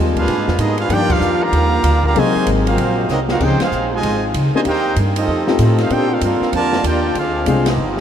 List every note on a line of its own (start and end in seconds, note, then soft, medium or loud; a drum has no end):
0.00 0.27 D#2 loud
0.00 0.27 D#3 medium
0.00 0.89 F3 medium
0.00 0.29 G3 medium
0.00 0.28 G#3 medium
0.00 0.27 C4 medium
0.00 0.28 C4 medium
0.00 0.29 D#4 medium
0.00 0.26 F4 loud
0.00 0.29 F4 medium
0.16 0.57 G#3 medium
0.16 0.57 D4 loud
0.16 0.57 F4 medium
0.16 0.57 G#4 medium
0.16 0.58 B4 medium
0.16 0.58 F5 loud
0.16 kick medium
0.16 ride medium
0.28 0.37 A#2 medium
0.28 0.90 B2 medium
0.28 0.90 A#3 medium
0.28 kick soft
0.28 ride medium
0.37 0.47 G#2 medium
0.48 0.58 F2 medium
0.48 snare medium
0.58 0.89 G#2 loud
0.58 0.80 B3 medium
0.58 0.79 D#4 medium
0.58 0.80 F4 medium
0.58 0.79 G#4 medium
0.58 0.80 D#5 loud
0.58 kick soft
0.58 hi-hat pedal medium
0.58 ride medium
0.78 0.90 G#3 medium
0.78 0.90 D4 medium
0.78 0.91 D4 medium
0.78 0.90 F4 medium
0.78 0.90 G#4 medium
0.78 0.91 B4 medium
0.78 0.91 F5 medium
0.78 ride medium
0.89 1.20 G2 medium
0.89 1.78 D#3 medium
0.89 1.77 F3 medium
0.89 2.14 F3 medium
0.89 2.14 G3 medium
0.89 1.77 A#3 medium
0.89 1.10 A#3 loud
0.89 1.10 D4 loud
0.89 1.78 D4 medium
0.89 2.14 F4 medium
0.89 1.12 F4 loud
0.89 1.10 G4 loud
0.89 1.78 G4 medium
0.89 1.12 A#4 medium
0.89 1.12 D5 loud
0.89 kick soft
0.89 ride medium
0.93 1.12 G5 loud
1.10 1.42 A#3 medium
1.10 1.42 D4 medium
1.10 1.43 D4 medium
1.10 1.42 F4 loud
1.10 1.42 G4 medium
1.10 1.43 A#4 medium
1.10 1.43 F5 loud
1.10 kick medium
1.10 crash medium
1.20 1.51 F2 medium
1.20 hi-hat pedal medium
1.43 2.03 D3 loud
1.43 2.03 G3 loud
1.43 2.04 A#3 loud
1.43 2.05 G4 loud
1.43 2.05 D5 loud
1.43 2.05 F5 loud
1.43 2.05 A#5 loud
1.52 1.83 D#2 medium
1.52 kick soft
1.52 ride medium
1.83 2.14 D2 loud
1.83 kick soft
1.83 hi-hat pedal medium
1.83 ride medium
2.04 2.15 D3 medium
2.04 2.15 G3 medium
2.04 2.15 A#3 loud
2.04 2.16 G4 loud
2.04 2.16 D5 medium
2.04 2.16 F5 loud
2.04 2.16 A#5 medium
2.04 kick medium
2.15 2.34 C2 medium
2.15 3.39 C3 medium
2.15 2.47 C3 loud
2.15 2.47 D#3 loud
2.15 3.03 F#3 medium
2.15 3.40 F#3 loud
2.15 3.40 G#3 medium
2.15 2.47 G#3 loud
2.15 3.40 A#3 medium
2.15 3.03 A#3 medium
2.15 3.03 C4 medium
2.15 3.03 D#4 medium
2.15 2.48 F#4 loud
2.15 3.03 G#4 medium
2.15 2.48 D#5 loud
2.15 2.48 G#5 loud
2.15 kick soft
2.15 ride medium
2.19 2.48 C5 loud
2.35 muted upright bass stroke soft
2.46 2.77 G#1 medium
2.46 kick soft
2.46 hi-hat pedal medium
2.46 ride medium
2.67 3.07 F#3 medium
2.67 3.07 C4 medium
2.67 3.07 D#4 medium
2.67 3.07 F4 medium
2.67 3.07 A#4 medium
2.67 3.08 C5 medium
2.67 3.07 F5 loud
2.67 ride medium
2.78 3.08 A#1 loud
2.78 kick soft
2.78 ride medium
3.09 3.39 C2 medium
3.09 3.19 F#3 medium
3.09 3.18 C4 medium
3.09 3.20 C4 medium
3.09 3.19 D#4 medium
3.09 3.19 F#4 medium
3.09 3.20 A#4 medium
3.09 3.20 D#5 loud
3.09 snare medium
3.09 hi-hat pedal medium
3.29 3.41 D4 medium
3.29 3.40 F4 medium
3.29 3.41 F#4 medium
3.29 3.41 A#4 medium
3.29 3.41 F5 medium
3.29 snare medium
3.40 3.59 C#2 medium
3.40 4.64 C3 medium
3.40 4.64 F3 medium
3.40 3.58 F3 medium
3.40 4.64 C4 medium
3.40 3.58 C4 medium
3.40 3.59 C#4 medium
3.40 5.26 D#4 medium
3.40 3.59 D#4 medium
3.40 3.60 G4 loud
3.40 3.59 G#4 medium
3.40 kick medium
3.40 crash medium
3.44 3.62 D#4 medium
3.44 3.62 G#4 loud
3.44 3.62 C5 medium
3.44 3.62 G5 loud
3.59 3.89 G#3 medium
3.59 3.89 C4 medium
3.59 3.89 F4 medium
3.59 muted upright bass stroke soft
3.59 snare medium
3.59 ride medium
3.64 3.91 D#4 medium
3.64 3.91 G#4 medium
3.64 3.91 C5 medium
3.64 3.91 F5 medium
3.72 4.02 A#1 medium
3.72 hi-hat pedal medium
3.92 4.24 C3 medium
3.92 4.24 F3 medium
3.92 4.24 G#3 loud
3.92 4.25 F4 medium
3.92 4.25 C5 medium
3.92 4.25 D#5 medium
3.92 4.26 G#5 loud
4.03 4.33 G#1 medium
4.03 kick soft
4.03 ride medium
4.34 4.52 C#2 loud
4.34 kick soft
4.34 hi-hat pedal medium
4.34 ride medium
4.54 4.60 C3 medium
4.54 4.60 F3 medium
4.54 4.60 G#3 medium
4.54 4.65 A#3 medium
4.54 4.65 C4 medium
4.54 4.65 D4 medium
4.54 4.65 D#4 medium
4.54 4.61 F4 medium
4.54 4.65 G4 medium
4.54 4.61 C5 medium
4.54 4.61 D#5 medium
4.54 4.61 G#5 loud
4.54 muted upright bass stroke soft
4.65 4.96 D#2 medium
4.65 5.89 C3 medium
4.65 5.28 G3 medium
4.65 4.95 A#3 loud
4.65 5.28 A#3 medium
4.65 4.95 D#4 loud
4.65 4.96 D#4 loud
4.65 4.95 G4 loud
4.65 4.96 A#4 medium
4.65 4.96 C5 medium
4.65 4.96 G5 loud
4.65 kick soft
4.65 ride medium
4.96 5.27 G2 loud
4.96 kick soft
4.96 hi-hat pedal medium
4.96 ride medium
5.16 5.56 A3 medium
5.16 5.57 C4 medium
5.16 5.57 D#4 medium
5.16 5.57 F4 medium
5.16 5.57 A4 medium
5.16 5.57 D#5 loud
5.16 ride medium
5.28 5.58 F2 medium
5.28 5.90 F3 medium
5.28 5.90 D#4 medium
5.28 kick soft
5.47 5.88 A3 medium
5.47 5.88 C4 medium
5.47 5.88 D#4 medium
5.47 5.88 F4 medium
5.47 5.88 G4 medium
5.47 snare medium
5.59 5.89 A2 loud
5.59 5.79 A3 medium
5.59 5.78 C4 medium
5.59 5.79 C4 medium
5.59 5.79 D#4 medium
5.59 5.79 F4 medium
5.59 5.79 D#5 medium
5.59 kick soft
5.59 hi-hat pedal medium
5.59 ride medium
5.63 5.79 A4 medium
5.78 5.91 A3 medium
5.78 5.91 C4 medium
5.78 5.91 D#4 medium
5.78 5.90 F4 medium
5.78 5.91 A4 medium
5.78 5.91 C5 medium
5.78 snare soft
5.78 ride medium
5.82 5.91 F5 medium
5.90 6.21 A#2 medium
5.90 7.76 D3 medium
5.90 6.77 A#3 medium
5.90 7.15 A#3 medium
5.90 6.78 C4 medium
5.90 6.78 D4 medium
5.90 6.12 D#4 medium
5.90 6.78 F4 medium
5.90 8.00 F4 loud
5.90 6.12 G4 loud
5.90 6.12 A4 medium
5.90 6.12 C5 medium
5.90 6.12 G5 loud
5.90 kick soft
5.90 ride medium
6.11 6.23 A3 medium
6.11 6.22 D4 medium
6.11 6.23 D4 medium
6.11 6.22 F4 medium
6.11 6.23 A4 medium
6.11 6.23 A#4 medium
6.11 6.23 F5 medium
6.21 6.40 G2 medium
6.21 6.52 A#3 medium
6.21 6.51 D4 medium
6.21 6.52 D4 medium
6.21 6.52 F4 medium
6.21 6.52 A4 medium
6.21 6.52 A#4 medium
6.21 6.52 F5 medium
6.21 kick soft
6.21 hi-hat pedal medium
6.21 ride medium
6.41 muted upright bass stroke soft
6.41 snare soft
6.53 6.83 F2 medium
6.53 6.83 D3 loud
6.53 6.83 F3 medium
6.53 6.83 A#3 medium
6.53 6.84 F4 medium
6.53 6.84 A#4 loud
6.53 6.83 D5 medium
6.53 6.84 A5 loud
6.53 kick soft
6.53 ride medium
6.73 snare medium
6.84 7.14 D#2 loud
6.84 7.14 A#3 medium
6.84 7.14 D4 medium
6.84 7.14 G4 medium
6.84 7.15 D5 medium
6.84 kick soft
6.84 hi-hat pedal medium
6.84 ride medium
6.88 7.15 F4 medium
6.88 7.15 A#4 medium
6.88 7.15 G5 medium
7.15 7.46 D2 loud
7.15 7.77 G#3 medium
7.15 7.47 G#3 medium
7.15 7.77 C4 medium
7.15 7.47 C4 medium
7.15 7.47 D4 medium
7.15 7.47 F4 medium
7.15 7.48 F5 loud
7.15 kick soft
7.15 ride medium
7.19 7.48 G#4 medium
7.19 7.48 C5 medium
7.46 7.77 C2 loud
7.46 7.65 G#3 medium
7.46 7.66 G#3 medium
7.46 7.65 C4 medium
7.46 7.66 C4 medium
7.46 7.65 D4 medium
7.46 7.66 D4 medium
7.46 7.65 F4 medium
7.46 7.66 F4 medium
7.46 7.65 G#4 medium
7.46 7.66 G#4 medium
7.46 7.66 C5 medium
7.46 7.66 F5 medium
7.46 kick soft
7.46 hi-hat pedal medium
7.46 ride medium
7.66 8.00 F3 medium
7.66 8.00 B3 medium
7.66 8.00 D#4 medium
7.66 8.00 D#5 medium
7.66 snare medium
7.66 ride medium
7.70 8.00 B3 medium
7.70 8.00 F4 medium
7.70 8.00 G4 medium
7.77 8.00 G1 medium
7.77 8.00 D#3 medium
7.77 8.00 G3 medium
7.77 8.00 B3 medium
7.97 snare medium